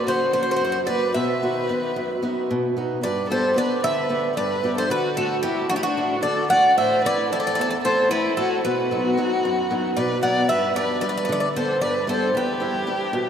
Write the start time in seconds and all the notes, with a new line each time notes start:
Already playing: A#3 C#4 F#4
0.07 C#3 F#4 C5
0.33 A#3 C#4 F#4 C5
0.43 C5
0.51 C5
0.56 C5
0.61 F#2 C5
0.72 C5
0.87 A#3 C#4 F#4 B4 D5
1.14 B2 B4 E5
1.42 D#3 B3 F#4
1.69 D#3 B3 F#4
1.96 F#2
2.23 B3 D#4 F#4
2.51 B2
2.77 B3 D#4 F#4
3.03 G2 B4 D5
3.29 B3 D4 G4 A4 C5
3.56 B3 D4 G4 B4 D5
3.83 D3 B4 E5
4.09 B3 D4 G4
4.37 G2 B4 D5
4.63 B3 D4 G4
4.77 A4 C5
4.90 D3 F#4 B4
5.17 A3 D4 F#4 A4
5.43 A3 D4 E4 F#4 G4
5.70 A2 D4 F#4
5.76 E4 G4
5.83 D4 F#4
5.97 A3 D4 F#4
6.23 D3 A4 D5
6.50 A3 D4 F#4 D5 F#5
6.78 A2 C5 E5
7.04 A3 C4 E4 B4 D5
7.30 A3 C4 E4 A4 D5
7.40 D5
7.47 D5
7.55 E2 D5
7.61 D5
7.71 D5
7.84 A3 C4 E4 A4 C5
8.11 A2 E4 B4
8.37 A3 C4 E4 F#4 A4
8.65 B2 F#4 B4
8.91 F#3 B3 D#4
9.17 F#3 B3 D#4
9.45 F#2
9.71 F#3 B3 D#4
9.97 B2 B4 D5
10.23 F#3 B3 D#4 D5 F#5
10.49 G2 B4 E5
10.76 G3 B3 D4 B4 D5
11.01 G3 B3 D4 B4 D5
11.09 D5
11.18 D5
11.25 D5
11.29 D3 D5
11.40 D5
11.56 G3 B3 D4 A4 C5
11.81 G2 B4 D5
12.07 G3 B3 D4 A4 C5
12.35 E2 G4 B4
12.60 G3 D4 E4
12.87 G3 D4 E4
13.13 B2